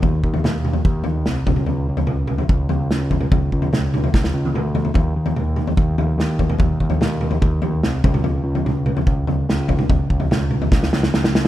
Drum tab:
SD |----o-------o---|------------o---|----o---oo------|------------o---|
T1 |----------------|----------------|-----------o----|----------------|
T2 |----o-o-------oo|----o-o--------o|----o-o-----o---|----o-o--------o|
FT |o--o---o--o---o-|o--o---o--o---o-|o--o---o------oo|o--o---o--o---o-|
BD |o-o-----o-----o-|--------o-----o-|o-o-----o-------|o-------o-----o-|

SD |----o-------o---|------------o---|----o---ooooooo-|
T1 |----------------|----------------|----------------|
T2 |----o-o-------oo|----o-o--------o|----o-o---------|
FT |o--o---o--o---o-|o--o---o--o---o-|o--o---o--------|
BD |o-o-----o-----o-|--------o-----o-|o-o-----o-------|